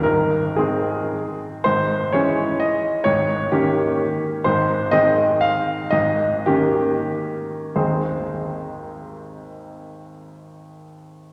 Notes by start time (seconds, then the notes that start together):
0.03 G#1 G#2 A#4
0.56 D#3 G#3 C4 G#4
1.64 G#1 G#2 C5
2.13 E3 G#3 C#4 C#5
2.60 D#5
3.04 G#1 G#2 C#5
3.52 D#3 A#3 C#4 G4
4.44 G#1 G#2 C5
4.91 D#3 G#3 C4 D#5
5.41 F5
5.91 G#1 G#2 D#5
6.46 D#3 A#3 C#4 G4
7.75 G#1 D#2 G#3 C4 D#4 G#4 C5